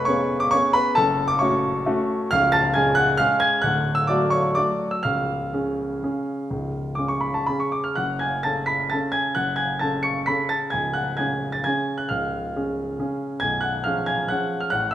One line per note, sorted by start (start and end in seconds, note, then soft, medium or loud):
0.00 0.55 F1 medium
0.00 0.55 F2 medium
0.00 0.54 B4 medium
0.00 0.06 C#5 medium
0.00 0.54 B5 medium
0.00 0.05 C#6 medium
0.05 0.49 B3 medium
0.05 0.49 C#4 medium
0.05 0.49 G#4 medium
0.05 0.38 C#5 medium
0.05 0.40 C#6 loud
0.40 0.52 D6 loud
0.51 0.93 B3 medium
0.51 0.93 C#4 medium
0.51 0.93 G#4 medium
0.51 0.73 C#5 medium
0.51 0.74 C#6 loud
0.73 0.95 B4 medium
0.73 0.96 B5 loud
0.95 1.39 F#1 medium
0.95 1.39 F#2 medium
0.95 1.27 A4 medium
0.95 1.28 A5 loud
1.28 1.40 D6 loud
1.39 1.83 A3 medium
1.39 1.83 C#4 medium
1.39 1.84 F#4 medium
1.39 2.28 C#5 medium
1.39 2.31 C#6 medium
1.86 2.28 A3 medium
1.86 2.28 C#4 medium
1.86 2.28 F#4 medium
2.31 2.75 C#1 medium
2.31 2.75 C#2 medium
2.31 2.52 F5 loud
2.31 2.53 F6 loud
2.52 2.74 A5 medium
2.52 2.75 A6 loud
2.74 3.16 G#3 medium
2.74 3.17 C#4 medium
2.74 3.17 G#4 medium
2.74 2.96 G#5 medium
2.74 2.97 G#6 medium
2.95 3.18 F#5 medium
2.95 3.19 F#6 loud
3.17 3.60 G#3 medium
3.17 3.61 C#4 medium
3.17 3.61 G#4 medium
3.17 3.40 F5 medium
3.17 3.41 F6 loud
3.40 3.62 G#5 medium
3.40 3.63 G#6 loud
3.62 4.08 D1 medium
3.62 4.08 D2 medium
3.62 3.95 F#5 medium
3.62 3.96 F#6 loud
3.95 4.08 E6 loud
4.07 4.53 F#3 medium
4.07 4.53 A3 medium
4.07 4.53 F#4 medium
4.07 4.31 D5 medium
4.07 4.32 D6 medium
4.30 4.54 C#5 medium
4.30 4.55 C#6 medium
4.55 5.01 F#3 soft
4.55 5.01 A3 soft
4.55 5.01 F#4 medium
4.55 4.89 D5 medium
4.55 4.91 D6 medium
4.91 5.03 E6 medium
5.03 5.52 C#1 soft
5.03 5.52 C#2 medium
5.03 6.93 F5 medium
5.03 6.96 F6 medium
5.53 5.98 C#3 soft
5.53 5.98 C#4 soft
5.53 5.99 G#4 soft
6.03 6.46 C#3 soft
6.03 6.46 C#4 soft
6.03 6.46 G#4 soft
6.50 6.96 C#1 soft
6.50 6.96 C#2 medium
6.95 7.43 C#3 soft
6.95 7.43 C#4 soft
6.95 7.43 G#4 soft
6.95 7.08 D6 medium
7.08 7.21 C#6 medium
7.21 7.34 B5 medium
7.34 7.47 A5 medium
7.46 7.93 C#3 soft
7.46 7.93 C#4 soft
7.46 7.93 G#4 soft
7.46 7.59 B5 medium
7.60 7.72 C#6 medium
7.72 7.84 D6 medium
7.84 7.96 F6 medium
7.95 8.43 F#1 soft
7.95 8.43 F#2 medium
7.95 8.18 F#5 medium
7.95 8.19 F#6 medium
8.19 8.43 G#5 medium
8.19 8.44 G#6 medium
8.43 8.88 C#3 soft
8.43 8.88 C#4 soft
8.43 8.88 A4 soft
8.43 8.66 A5 medium
8.43 8.67 A6 medium
8.66 8.89 B5 medium
8.66 8.90 B6 medium
8.90 9.33 C#3 soft
8.90 9.33 C#4 soft
8.90 9.33 A4 soft
8.90 9.12 A5 medium
8.90 9.13 A6 medium
9.12 9.34 G#5 medium
9.12 9.35 G#6 medium
9.35 9.80 F#1 soft
9.35 9.80 F#2 medium
9.35 9.57 F#5 medium
9.35 9.58 F#6 medium
9.56 9.79 G#5 medium
9.56 9.80 G#6 medium
9.79 10.25 C#3 soft
9.79 10.25 C#4 soft
9.79 10.25 A4 soft
9.79 10.03 A5 medium
9.79 10.04 A6 medium
10.03 10.26 C#6 medium
10.03 10.27 C#7 medium
10.26 10.69 C#3 soft
10.26 10.69 C#4 soft
10.26 10.69 A4 soft
10.26 10.49 B5 medium
10.26 10.50 B6 medium
10.49 10.71 A5 medium
10.49 10.72 A6 medium
10.70 11.17 C#1 medium
10.70 11.17 C#2 soft
10.70 10.93 G#5 medium
10.70 10.94 G#6 medium
10.93 11.16 F#5 medium
10.93 11.17 F#6 medium
11.17 11.60 C#3 soft
11.17 11.61 C#4 soft
11.17 11.61 G#4 soft
11.17 11.50 G#5 medium
11.17 11.52 G#6 medium
11.52 11.64 A6 medium
11.64 12.06 C#3 soft
11.64 12.06 C#4 soft
11.64 12.06 G#4 soft
11.64 11.96 G#5 medium
11.64 11.98 G#6 medium
11.98 12.09 F#6 medium
12.09 12.53 C#1 soft
12.09 12.53 C#2 medium
12.09 13.16 F5 medium
12.09 13.19 F6 medium
12.56 12.95 C#3 soft
12.56 12.95 C#4 soft
12.56 12.95 G#4 soft
12.99 13.38 C#3 soft
12.99 13.38 C#4 soft
12.99 13.38 G#4 soft
13.40 13.84 B0 soft
13.40 13.84 B1 medium
13.40 13.61 G#5 medium
13.40 13.62 G#6 medium
13.61 13.83 F#5 medium
13.61 13.84 F#6 medium
13.84 14.27 F3 soft
13.84 14.27 C#4 soft
13.84 14.27 G#4 soft
13.84 14.06 F5 medium
13.84 14.07 F6 medium
14.06 14.28 G#5 medium
14.06 14.29 G#6 medium
14.28 14.69 F3 soft
14.28 14.69 C#4 soft
14.28 14.70 G#4 soft
14.28 14.60 F#5 medium
14.28 14.61 F#6 medium
14.60 14.72 F6 medium
14.70 14.94 A1 medium
14.70 14.94 A2 soft
14.70 14.92 F#5 medium
14.70 14.92 F#6 medium
14.91 14.94 E6 medium